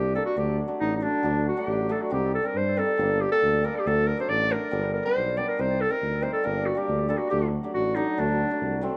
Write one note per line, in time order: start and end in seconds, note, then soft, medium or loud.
0.00 0.19 C2 medium
0.00 0.14 G3 medium
0.00 0.14 G4 medium
0.15 0.41 G3 medium
0.15 0.26 A#3 medium
0.15 0.26 D4 medium
0.15 0.25 A4 medium
0.26 0.36 F#4 medium
0.37 0.63 D2 medium
0.37 0.67 F#3 medium
0.37 0.53 A3 medium
0.37 0.53 D4 medium
0.37 0.57 G4 medium
0.68 0.99 F#3 medium
0.68 0.85 A3 medium
0.68 0.85 D4 medium
0.80 1.07 A1 medium
0.80 0.94 D#4 loud
0.96 1.04 D#4 medium
1.01 1.22 F#3 medium
1.01 1.13 A3 medium
1.01 1.13 D4 medium
1.01 1.46 D4 medium
1.23 1.50 D2 medium
1.23 1.56 F#3 medium
1.23 1.40 A3 medium
1.23 1.41 D4 medium
1.48 1.61 F#4 medium
1.57 1.88 F#3 medium
1.57 1.73 A3 medium
1.57 1.73 D4 medium
1.57 1.94 G4 medium
1.67 1.93 A1 medium
1.89 2.16 F#3 medium
1.89 2.00 A3 medium
1.89 2.01 D4 medium
1.89 2.03 A4 medium
2.02 2.12 F#4 medium
2.10 2.38 C2 medium
2.10 2.41 G3 medium
2.10 2.27 C4 medium
2.10 2.27 D#4 medium
2.10 2.32 G4 medium
2.34 2.48 A4 medium
2.43 2.76 G3 medium
2.43 2.60 C4 soft
2.43 2.61 D4 medium
2.43 2.58 A#4 medium
2.55 2.81 G2 medium
2.55 2.80 C5 medium
2.77 2.97 G3 medium
2.77 2.88 C4 medium
2.77 2.88 D#4 medium
2.77 3.23 A4 medium
2.98 3.24 G1 loud
2.98 3.31 G3 medium
2.98 3.15 A#3 medium
2.98 3.16 D4 medium
3.21 3.31 G4 medium
3.32 3.61 G3 medium
3.32 3.48 A#3 medium
3.32 3.48 D4 medium
3.32 3.66 A4 loud
3.43 3.68 D2 medium
3.62 3.90 G3 medium
3.62 3.75 A#3 medium
3.62 3.75 D4 medium
3.62 3.77 A#4 medium
3.76 3.89 G4 medium
3.86 4.12 D2 medium
3.86 4.16 F#3 medium
3.86 4.02 A3 medium
3.86 4.03 D4 medium
3.86 4.08 A4 loud
4.07 4.18 A#4 medium
4.18 4.49 F#3 medium
4.18 4.35 A3 medium
4.18 4.35 D4 medium
4.18 4.31 C5 medium
4.29 4.55 A1 medium
4.29 4.53 D5 loud
4.51 4.77 F#3 medium
4.51 4.61 A3 medium
4.51 4.62 D4 medium
4.51 4.93 A#4 loud
4.71 4.98 G1 loud
4.71 5.05 G3 medium
4.71 4.88 B3 medium
4.71 4.89 D4 medium
4.94 5.04 A#4 medium
5.05 5.36 G3 medium
5.05 5.21 B3 medium
5.05 5.22 D4 medium
5.05 5.39 C5 loud
5.16 5.42 B1 medium
5.37 5.56 G3 medium
5.37 5.48 B3 medium
5.37 5.48 D4 medium
5.37 5.48 D5 medium
5.48 5.62 A#4 medium
5.57 5.85 C2 medium
5.57 5.88 G3 medium
5.57 5.75 C4 medium
5.57 5.75 D#4 medium
5.57 5.83 C5 medium
5.81 5.92 A4 medium
5.89 6.20 G3 medium
5.89 6.06 C4 medium
5.89 6.07 D#4 medium
5.89 6.24 A#4 loud
6.02 6.28 D2 medium
6.21 6.42 G3 medium
6.21 6.33 C4 medium
6.21 6.34 D#4 medium
6.21 6.32 C5 medium
6.33 6.46 A4 medium
6.43 6.71 G1 medium
6.43 6.74 G3 medium
6.43 6.60 A#3 medium
6.43 6.61 D4 medium
6.43 6.67 A#4 medium
6.66 6.79 F#4 medium
6.75 7.07 G3 medium
6.75 6.92 A#3 medium
6.75 6.93 D4 medium
6.75 7.09 G4 medium
6.89 7.14 D2 medium
7.09 7.36 G3 medium
7.09 7.20 A#3 medium
7.09 7.20 D4 medium
7.09 7.19 A4 medium
7.18 7.29 F#4 medium
7.30 7.58 D2 medium
7.30 7.63 F#3 medium
7.30 7.47 A3 medium
7.30 7.47 D4 medium
7.30 7.50 G4 medium
7.63 7.94 F#3 medium
7.63 7.79 A3 soft
7.63 7.80 D4 medium
7.74 8.00 A1 medium
7.74 7.97 F#4 medium
7.95 8.16 F#3 medium
7.95 8.06 A3 medium
7.95 8.07 D4 medium
7.95 8.21 D#4 medium
8.18 8.44 D2 medium
8.18 8.49 F#3 medium
8.18 8.34 A3 medium
8.18 8.34 D4 medium
8.18 8.83 D4 medium
8.50 8.80 F#3 medium
8.50 8.67 A3 soft
8.50 8.67 D4 medium
8.61 8.87 C2 medium
8.81 8.97 F#3 medium
8.81 8.93 A3 medium
8.81 8.93 C4 medium